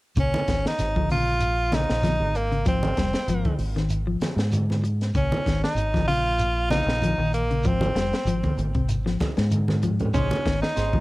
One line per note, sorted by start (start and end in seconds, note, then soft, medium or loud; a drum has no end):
0.16 0.33 A#1 medium
0.16 0.41 C#3 medium
0.16 0.63 C#4 medium
0.16 kick medium
0.16 closed hi-hat medium
0.16 high conga soft
0.16 shekere medium
0.34 closed hi-hat soft
0.34 high conga medium
0.48 0.64 G#1 medium
0.48 0.72 D#3 medium
0.48 kick medium
0.48 snare medium
0.48 closed hi-hat soft
0.48 shekere soft
0.66 1.09 D#4 medium
0.66 snare medium
0.79 1.09 G#1 medium
0.79 snare soft
0.79 closed hi-hat medium
0.79 high conga soft
0.79 shekere medium
0.96 1.07 F3 medium
0.96 kick medium
0.96 high conga medium
1.10 1.85 A#1 medium
1.10 1.35 C#3 medium
1.10 1.76 F4 medium
1.10 open hi-hat soft
1.10 high conga medium
1.10 shekere soft
1.40 closed hi-hat medium
1.40 high conga soft
1.40 shekere medium
1.72 1.97 C#3 medium
1.72 2.38 D#4 medium
1.72 snare medium
1.72 closed hi-hat soft
1.72 high conga medium
1.72 shekere soft
1.90 2.19 A#1 medium
1.90 snare medium
2.02 2.17 F3 medium
2.02 snare soft
2.02 closed hi-hat medium
2.02 high conga medium
2.02 shekere medium
2.20 2.63 G#1 medium
2.20 high conga medium
2.35 2.67 A#3 medium
2.35 closed hi-hat soft
2.35 shekere soft
2.52 2.63 C#3 medium
2.52 closed hi-hat soft
2.65 2.96 G#1 medium
2.65 2.90 F3 medium
2.65 3.57 C4 medium
2.65 kick medium
2.65 closed hi-hat medium
2.65 high conga soft
2.65 shekere medium
2.83 closed hi-hat soft
2.83 high conga medium
2.97 3.13 F1 medium
2.97 3.21 G3 medium
2.97 kick medium
2.97 snare medium
2.97 closed hi-hat soft
2.97 shekere soft
3.13 snare medium
3.13 closed hi-hat soft
3.27 3.44 G#1 medium
3.27 3.53 F3 medium
3.27 closed hi-hat medium
3.27 high conga soft
3.27 shekere medium
3.45 kick medium
3.45 closed hi-hat soft
3.45 high conga medium
3.58 4.17 G#1 medium
3.58 open hi-hat soft
3.58 shekere soft
3.76 4.00 D#3 medium
3.76 snare soft
3.76 closed hi-hat soft
3.89 closed hi-hat medium
3.89 high conga soft
3.89 shekere medium
4.07 4.31 F3 medium
4.20 muted fingered electric bass stroke soft
4.20 snare medium
4.20 closed hi-hat soft
4.20 high conga medium
4.20 shekere soft
4.36 5.10 G#2 medium
4.36 snare medium
4.36 closed hi-hat soft
4.52 closed hi-hat medium
4.52 high conga medium
4.52 shekere medium
4.70 snare soft
4.70 high conga medium
4.84 muted clean electric guitar stroke medium
4.84 closed hi-hat soft
4.84 shekere soft
5.01 snare soft
5.01 closed hi-hat soft
5.14 5.31 A#1 loud
5.14 5.39 C#3 medium
5.14 5.61 C#4 medium
5.14 kick medium
5.14 closed hi-hat medium
5.14 high conga soft
5.14 shekere medium
5.32 closed hi-hat soft
5.32 high conga medium
5.46 5.62 G#1 medium
5.46 5.70 D#3 medium
5.46 kick medium
5.46 snare medium
5.46 closed hi-hat soft
5.46 shekere soft
5.64 6.06 D#4 medium
5.64 snare medium
5.75 6.05 G#1 medium
5.75 closed hi-hat medium
5.75 high conga soft
5.75 shekere medium
5.94 6.05 F3 medium
5.94 kick medium
5.94 snare soft
5.94 high conga medium
6.07 6.83 A#1 medium
6.07 6.32 C#3 medium
6.07 6.67 F4 loud
6.07 open hi-hat medium
6.07 shekere soft
6.39 closed hi-hat medium
6.39 high conga soft
6.39 shekere medium
6.70 6.94 C#3 medium
6.70 7.29 D#4 medium
6.70 snare medium
6.70 closed hi-hat soft
6.70 high conga medium
6.70 shekere soft
6.86 7.16 A#1 medium
6.86 snare medium
7.01 7.15 F3 medium
7.01 closed hi-hat medium
7.01 high conga medium
7.01 shekere medium
7.18 7.61 A#1 medium
7.18 7.43 D#3 medium
7.33 7.69 A#3 medium
7.33 closed hi-hat soft
7.33 shekere soft
7.51 7.62 C#3 medium
7.51 closed hi-hat soft
7.63 7.94 G#1 medium
7.63 7.89 F3 medium
7.63 8.60 C4 medium
7.63 kick medium
7.63 closed hi-hat medium
7.63 high conga soft
7.63 shekere medium
7.81 closed hi-hat soft
7.81 high conga medium
7.95 8.11 F1 medium
7.95 8.19 G3 medium
7.95 snare medium
7.95 closed hi-hat soft
7.95 shekere soft
8.13 snare medium
8.13 closed hi-hat soft
8.25 8.42 G#1 medium
8.25 8.51 F3 medium
8.25 closed hi-hat medium
8.25 shekere medium
8.43 kick medium
8.43 closed hi-hat soft
8.43 high conga medium
8.57 9.16 G#1 medium
8.57 closed hi-hat soft
8.57 high conga medium
8.57 shekere soft
8.75 8.99 C3 medium
8.75 kick medium
8.75 closed hi-hat soft
8.89 closed hi-hat medium
8.89 high conga soft
8.89 shekere medium
9.06 9.30 F3 medium
9.06 snare soft
9.20 muted fingered electric bass stroke soft
9.20 kick medium
9.20 snare medium
9.20 closed hi-hat soft
9.20 high conga medium
9.20 shekere soft
9.37 10.11 G#2 medium
9.37 9.61 G#3 medium
9.37 snare medium
9.37 closed hi-hat soft
9.51 closed hi-hat medium
9.51 high conga medium
9.51 shekere medium
9.68 snare soft
9.68 high conga medium
9.82 10.07 F3 medium
9.82 closed hi-hat soft
9.82 low conga medium
9.82 shekere soft
10.00 closed hi-hat soft
10.00 low conga medium
10.14 10.30 A#1 loud
10.14 10.38 C#3 medium
10.14 10.31 C#4 medium
10.14 10.59 C#4 medium
10.14 10.29 D#4 medium
10.14 10.29 G#4 medium
10.14 10.28 C5 medium
10.14 kick medium
10.14 closed hi-hat medium
10.14 shekere medium
10.29 muted clean electric guitar stroke soft
10.29 closed hi-hat soft
10.29 high conga medium
10.44 10.61 G#1 medium
10.44 10.69 D#3 medium
10.44 muted clean electric guitar stroke soft
10.44 kick medium
10.44 snare medium
10.44 closed hi-hat soft
10.44 shekere soft
10.61 11.00 D#4 medium
10.61 muted clean electric guitar stroke soft
10.61 snare medium
10.75 11.00 G#1 medium
10.75 10.96 C#4 soft
10.75 10.96 D#4 medium
10.75 10.96 G#4 medium
10.75 10.96 C5 medium
10.75 snare soft
10.75 closed hi-hat medium
10.75 high conga soft
10.75 shekere medium
10.93 11.00 F3 medium
10.93 kick medium
10.93 high conga medium